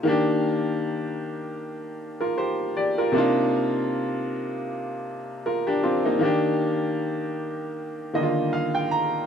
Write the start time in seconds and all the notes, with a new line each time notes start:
0.03 D#3 A#3
0.07 D4 G4
2.20 F4 A#4
2.38 G4 C5
2.77 G4 D5
2.98 F4 A#4
3.12 C3 A#3 D4
3.16 D#4 F4
5.46 F4 A#4
5.67 D4 G4
5.83 C4 F4
6.05 A#3 D#4
6.19 D#3 A#3 D4
6.25 G4
8.13 D3 D#3 A#3 D#4 D#5
8.23 F4
8.53 F5
8.75 G5
8.91 A#5